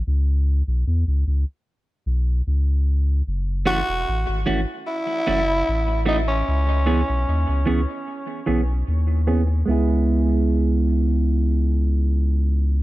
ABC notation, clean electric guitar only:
X:1
M:4/4
L:1/8
Q:1/4=75
K:C#m
V:1 name="Clean electric guitar"
z8 | z [E,A,CF] z [E,A,CF] z [E,A,CF] z [E,A,CF] | z [E,B,CG] z [E,B,CG] z [E,B,CG] z [E,B,CG] | [G,B,EG]8 |]